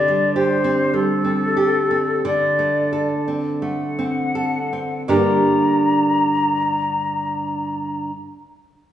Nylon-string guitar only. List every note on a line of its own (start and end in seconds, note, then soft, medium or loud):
0.00 2.21 D3 medium
0.08 0.53 G3 medium
0.36 0.82 G4 medium
0.64 1.12 C4 medium
0.94 1.44 G3 soft
1.24 1.78 C4 soft
1.57 2.11 G4 soft
1.91 2.25 C4 medium
2.25 5.04 D3 medium
2.59 3.13 A3 soft
2.93 3.48 A4 soft
3.28 3.84 C4 soft
3.62 4.20 A3 soft
3.99 4.58 C4 soft
4.35 4.94 A4 soft
4.73 5.08 C4 soft
5.08 8.10 G2 medium
5.08 8.10 D3 medium
5.08 8.10 A#3 soft
5.08 8.10 D4 soft
5.08 8.11 G4 soft
5.08 8.11 A#4 soft